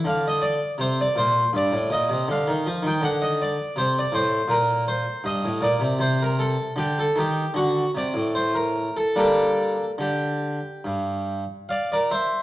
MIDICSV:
0, 0, Header, 1, 2, 480
1, 0, Start_track
1, 0, Key_signature, -2, "minor"
1, 0, Tempo, 750939
1, 22, Time_signature, 4, 2, 24, 8
1, 4822, Tempo, 801068
1, 5782, Tempo, 835655
1, 7666, End_track
2, 0, Start_track
2, 0, Title_t, "Harpsichord"
2, 0, Program_c, 0, 6
2, 29, Note_on_c, 0, 50, 61
2, 45, Note_on_c, 0, 77, 100
2, 152, Note_off_c, 0, 77, 0
2, 176, Note_on_c, 0, 75, 74
2, 266, Note_on_c, 0, 74, 90
2, 277, Note_off_c, 0, 75, 0
2, 368, Note_off_c, 0, 50, 0
2, 465, Note_off_c, 0, 74, 0
2, 499, Note_on_c, 0, 48, 67
2, 517, Note_on_c, 0, 72, 96
2, 626, Note_off_c, 0, 72, 0
2, 644, Note_on_c, 0, 74, 92
2, 671, Note_off_c, 0, 48, 0
2, 739, Note_on_c, 0, 46, 58
2, 750, Note_off_c, 0, 74, 0
2, 752, Note_on_c, 0, 72, 89
2, 912, Note_off_c, 0, 46, 0
2, 950, Note_off_c, 0, 72, 0
2, 979, Note_on_c, 0, 43, 63
2, 999, Note_on_c, 0, 74, 92
2, 1093, Note_off_c, 0, 43, 0
2, 1102, Note_on_c, 0, 45, 58
2, 1195, Note_off_c, 0, 74, 0
2, 1215, Note_off_c, 0, 45, 0
2, 1216, Note_on_c, 0, 46, 59
2, 1228, Note_on_c, 0, 75, 97
2, 1332, Note_off_c, 0, 46, 0
2, 1338, Note_on_c, 0, 48, 61
2, 1431, Note_off_c, 0, 75, 0
2, 1455, Note_off_c, 0, 48, 0
2, 1458, Note_on_c, 0, 50, 61
2, 1477, Note_on_c, 0, 77, 92
2, 1576, Note_off_c, 0, 50, 0
2, 1581, Note_on_c, 0, 51, 61
2, 1698, Note_off_c, 0, 51, 0
2, 1701, Note_on_c, 0, 53, 56
2, 1807, Note_on_c, 0, 51, 55
2, 1818, Note_off_c, 0, 53, 0
2, 1834, Note_off_c, 0, 77, 0
2, 1836, Note_on_c, 0, 79, 93
2, 1925, Note_on_c, 0, 50, 63
2, 1929, Note_off_c, 0, 51, 0
2, 1943, Note_on_c, 0, 78, 108
2, 1950, Note_off_c, 0, 79, 0
2, 2057, Note_on_c, 0, 75, 86
2, 2062, Note_off_c, 0, 78, 0
2, 2178, Note_off_c, 0, 75, 0
2, 2184, Note_on_c, 0, 74, 84
2, 2272, Note_off_c, 0, 50, 0
2, 2404, Note_on_c, 0, 48, 70
2, 2416, Note_on_c, 0, 72, 103
2, 2419, Note_off_c, 0, 74, 0
2, 2535, Note_off_c, 0, 72, 0
2, 2549, Note_on_c, 0, 74, 92
2, 2578, Note_off_c, 0, 48, 0
2, 2635, Note_on_c, 0, 45, 57
2, 2649, Note_on_c, 0, 72, 92
2, 2660, Note_off_c, 0, 74, 0
2, 2811, Note_off_c, 0, 45, 0
2, 2863, Note_on_c, 0, 46, 64
2, 2877, Note_on_c, 0, 70, 87
2, 2886, Note_off_c, 0, 72, 0
2, 3085, Note_off_c, 0, 70, 0
2, 3119, Note_on_c, 0, 72, 95
2, 3219, Note_off_c, 0, 46, 0
2, 3350, Note_on_c, 0, 43, 61
2, 3361, Note_on_c, 0, 75, 91
2, 3366, Note_off_c, 0, 72, 0
2, 3475, Note_off_c, 0, 43, 0
2, 3483, Note_on_c, 0, 45, 61
2, 3584, Note_on_c, 0, 46, 63
2, 3596, Note_on_c, 0, 74, 75
2, 3602, Note_off_c, 0, 45, 0
2, 3608, Note_off_c, 0, 75, 0
2, 3706, Note_on_c, 0, 48, 59
2, 3712, Note_off_c, 0, 46, 0
2, 3821, Note_off_c, 0, 48, 0
2, 3828, Note_on_c, 0, 48, 63
2, 3840, Note_on_c, 0, 72, 97
2, 3843, Note_off_c, 0, 74, 0
2, 3965, Note_off_c, 0, 72, 0
2, 3978, Note_on_c, 0, 70, 80
2, 4086, Note_on_c, 0, 69, 84
2, 4094, Note_off_c, 0, 70, 0
2, 4183, Note_off_c, 0, 48, 0
2, 4294, Note_off_c, 0, 69, 0
2, 4320, Note_on_c, 0, 50, 62
2, 4333, Note_on_c, 0, 67, 95
2, 4455, Note_off_c, 0, 67, 0
2, 4469, Note_on_c, 0, 69, 81
2, 4501, Note_off_c, 0, 50, 0
2, 4574, Note_on_c, 0, 51, 53
2, 4584, Note_off_c, 0, 69, 0
2, 4594, Note_on_c, 0, 67, 75
2, 4753, Note_off_c, 0, 51, 0
2, 4797, Note_off_c, 0, 67, 0
2, 4820, Note_on_c, 0, 50, 59
2, 4832, Note_on_c, 0, 66, 80
2, 4990, Note_off_c, 0, 50, 0
2, 5028, Note_off_c, 0, 66, 0
2, 5063, Note_on_c, 0, 48, 52
2, 5078, Note_on_c, 0, 74, 85
2, 5173, Note_off_c, 0, 48, 0
2, 5180, Note_on_c, 0, 45, 53
2, 5271, Note_off_c, 0, 74, 0
2, 5305, Note_on_c, 0, 72, 78
2, 5420, Note_off_c, 0, 72, 0
2, 5423, Note_on_c, 0, 70, 80
2, 5617, Note_off_c, 0, 45, 0
2, 5664, Note_off_c, 0, 70, 0
2, 5674, Note_on_c, 0, 69, 70
2, 5789, Note_on_c, 0, 58, 37
2, 5789, Note_on_c, 0, 62, 39
2, 5791, Note_off_c, 0, 69, 0
2, 5792, Note_on_c, 0, 55, 46
2, 5807, Note_on_c, 0, 69, 80
2, 6129, Note_off_c, 0, 55, 0
2, 6175, Note_off_c, 0, 58, 0
2, 6175, Note_off_c, 0, 62, 0
2, 6209, Note_off_c, 0, 69, 0
2, 6263, Note_on_c, 0, 50, 46
2, 6275, Note_on_c, 0, 67, 62
2, 6605, Note_off_c, 0, 50, 0
2, 6758, Note_on_c, 0, 43, 44
2, 7090, Note_off_c, 0, 43, 0
2, 7090, Note_off_c, 0, 67, 0
2, 7243, Note_on_c, 0, 77, 77
2, 7253, Note_on_c, 0, 74, 58
2, 7353, Note_off_c, 0, 74, 0
2, 7356, Note_off_c, 0, 77, 0
2, 7376, Note_on_c, 0, 74, 77
2, 7383, Note_on_c, 0, 70, 58
2, 7479, Note_off_c, 0, 70, 0
2, 7482, Note_off_c, 0, 74, 0
2, 7484, Note_on_c, 0, 76, 76
2, 7487, Note_on_c, 0, 72, 55
2, 7666, Note_off_c, 0, 72, 0
2, 7666, Note_off_c, 0, 76, 0
2, 7666, End_track
0, 0, End_of_file